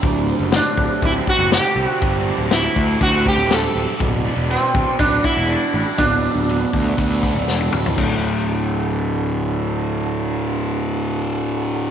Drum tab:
CC |----------------|----------------|----------------|----------------|
HH |o---o---o---o---|o---o---o---o---|o---o---o---o---|o---o---o-------|
SD |----o-------o---|----o-------o---|----------------|------------o---|
T1 |----------------|----------------|----------------|-------------o--|
T2 |----------------|----------------|----------------|--------------o-|
FT |----------------|----------------|----------------|---------------o|
BD |o-----o-o-o-----|o-----o-o-o-----|o-----o-o-o-----|o-----o-o-o-----|

CC |x---------------|----------------|
HH |----------------|----------------|
SD |----------------|----------------|
T1 |----------------|----------------|
T2 |----------------|----------------|
FT |----------------|----------------|
BD |o---------------|----------------|